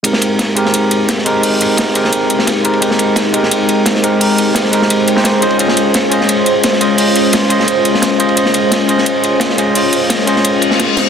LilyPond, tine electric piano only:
\new Staff \with { instrumentName = "Tine electric piano" } { \time 4/4 \key aes \major \tempo 4 = 173 <aes c' ees' g' bes'>4. <aes c' ees' g' bes'>2 <aes c' ees' g' bes'>8 | <aes c' ees' g' bes'>4. <aes c' ees' g' bes'>2 <aes c' ees' g' bes'>8 | <aes c' ees' g' bes'>4. <aes c' ees' g' bes'>2 <aes c' ees' g' bes'>8 | <aes c' ees' g' bes'>4. <aes c' ees' g' bes'>4~ <aes c' ees' g' bes'>16 <aes c' ees' g' c''>8. <des' f' aes' c'' ees''>8 |
<des' f' aes' c'' ees''>4. <des' f' aes' c'' ees''>2 <des' f' aes' c'' ees''>8 | <des' f' aes' c'' ees''>4. <des' f' aes' c'' ees''>2 <des' f' aes' c'' ees''>8 | <des' f' aes' c'' ees''>4. <des' f' aes' c'' ees''>2 <des' f' aes' c'' ees''>8 | <des' f' aes' c'' ees''>4. <des' f' aes' c'' ees''>2 <des' f' aes' c'' ees''>8 | }